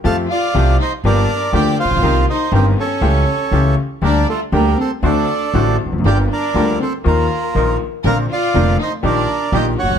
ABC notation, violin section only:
X:1
M:4/4
L:1/8
Q:1/4=120
K:Gm
V:1 name="Violin section"
A F2 E D2 G F- | F E C ^C4 z | D A, B, C D3 z | G D2 C B,3 z |
B F2 E D2 G ^F |]